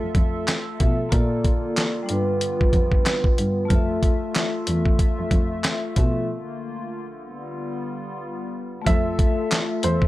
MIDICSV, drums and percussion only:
0, 0, Header, 1, 2, 480
1, 0, Start_track
1, 0, Key_signature, -1, "major"
1, 0, Tempo, 645161
1, 835, Time_signature, 4, 2, 24, 8
1, 7498, End_track
2, 0, Start_track
2, 0, Title_t, "Drums"
2, 110, Note_on_c, 9, 36, 93
2, 110, Note_on_c, 9, 42, 64
2, 184, Note_off_c, 9, 36, 0
2, 185, Note_off_c, 9, 42, 0
2, 356, Note_on_c, 9, 42, 96
2, 357, Note_on_c, 9, 39, 85
2, 360, Note_on_c, 9, 38, 106
2, 430, Note_off_c, 9, 42, 0
2, 432, Note_off_c, 9, 39, 0
2, 434, Note_off_c, 9, 38, 0
2, 596, Note_on_c, 9, 42, 72
2, 597, Note_on_c, 9, 36, 96
2, 670, Note_off_c, 9, 42, 0
2, 672, Note_off_c, 9, 36, 0
2, 833, Note_on_c, 9, 42, 89
2, 834, Note_on_c, 9, 36, 107
2, 908, Note_off_c, 9, 36, 0
2, 908, Note_off_c, 9, 42, 0
2, 1075, Note_on_c, 9, 36, 96
2, 1076, Note_on_c, 9, 42, 72
2, 1150, Note_off_c, 9, 36, 0
2, 1150, Note_off_c, 9, 42, 0
2, 1316, Note_on_c, 9, 42, 89
2, 1320, Note_on_c, 9, 39, 92
2, 1323, Note_on_c, 9, 38, 116
2, 1390, Note_off_c, 9, 42, 0
2, 1395, Note_off_c, 9, 39, 0
2, 1397, Note_off_c, 9, 38, 0
2, 1553, Note_on_c, 9, 42, 83
2, 1627, Note_off_c, 9, 42, 0
2, 1794, Note_on_c, 9, 42, 86
2, 1868, Note_off_c, 9, 42, 0
2, 1940, Note_on_c, 9, 36, 93
2, 2015, Note_off_c, 9, 36, 0
2, 2030, Note_on_c, 9, 36, 92
2, 2031, Note_on_c, 9, 42, 63
2, 2105, Note_off_c, 9, 36, 0
2, 2105, Note_off_c, 9, 42, 0
2, 2169, Note_on_c, 9, 36, 93
2, 2244, Note_off_c, 9, 36, 0
2, 2276, Note_on_c, 9, 42, 98
2, 2278, Note_on_c, 9, 39, 87
2, 2280, Note_on_c, 9, 38, 109
2, 2351, Note_off_c, 9, 42, 0
2, 2352, Note_off_c, 9, 39, 0
2, 2355, Note_off_c, 9, 38, 0
2, 2411, Note_on_c, 9, 36, 102
2, 2486, Note_off_c, 9, 36, 0
2, 2516, Note_on_c, 9, 42, 71
2, 2590, Note_off_c, 9, 42, 0
2, 2754, Note_on_c, 9, 42, 85
2, 2755, Note_on_c, 9, 36, 110
2, 2829, Note_off_c, 9, 36, 0
2, 2829, Note_off_c, 9, 42, 0
2, 2995, Note_on_c, 9, 36, 97
2, 2996, Note_on_c, 9, 42, 73
2, 3070, Note_off_c, 9, 36, 0
2, 3070, Note_off_c, 9, 42, 0
2, 3236, Note_on_c, 9, 42, 87
2, 3241, Note_on_c, 9, 39, 92
2, 3243, Note_on_c, 9, 38, 113
2, 3310, Note_off_c, 9, 42, 0
2, 3315, Note_off_c, 9, 39, 0
2, 3317, Note_off_c, 9, 38, 0
2, 3474, Note_on_c, 9, 42, 87
2, 3548, Note_off_c, 9, 42, 0
2, 3612, Note_on_c, 9, 36, 86
2, 3686, Note_off_c, 9, 36, 0
2, 3713, Note_on_c, 9, 36, 92
2, 3713, Note_on_c, 9, 42, 88
2, 3787, Note_off_c, 9, 36, 0
2, 3788, Note_off_c, 9, 42, 0
2, 3950, Note_on_c, 9, 36, 92
2, 3951, Note_on_c, 9, 42, 65
2, 4025, Note_off_c, 9, 36, 0
2, 4025, Note_off_c, 9, 42, 0
2, 4197, Note_on_c, 9, 42, 96
2, 4198, Note_on_c, 9, 39, 89
2, 4201, Note_on_c, 9, 38, 107
2, 4271, Note_off_c, 9, 42, 0
2, 4273, Note_off_c, 9, 39, 0
2, 4275, Note_off_c, 9, 38, 0
2, 4436, Note_on_c, 9, 42, 72
2, 4438, Note_on_c, 9, 36, 90
2, 4511, Note_off_c, 9, 42, 0
2, 4513, Note_off_c, 9, 36, 0
2, 6595, Note_on_c, 9, 36, 112
2, 6596, Note_on_c, 9, 42, 85
2, 6670, Note_off_c, 9, 36, 0
2, 6670, Note_off_c, 9, 42, 0
2, 6836, Note_on_c, 9, 36, 101
2, 6838, Note_on_c, 9, 42, 73
2, 6911, Note_off_c, 9, 36, 0
2, 6912, Note_off_c, 9, 42, 0
2, 7078, Note_on_c, 9, 42, 89
2, 7082, Note_on_c, 9, 39, 95
2, 7085, Note_on_c, 9, 38, 120
2, 7152, Note_off_c, 9, 42, 0
2, 7156, Note_off_c, 9, 39, 0
2, 7159, Note_off_c, 9, 38, 0
2, 7314, Note_on_c, 9, 42, 88
2, 7388, Note_off_c, 9, 42, 0
2, 7453, Note_on_c, 9, 36, 88
2, 7498, Note_off_c, 9, 36, 0
2, 7498, End_track
0, 0, End_of_file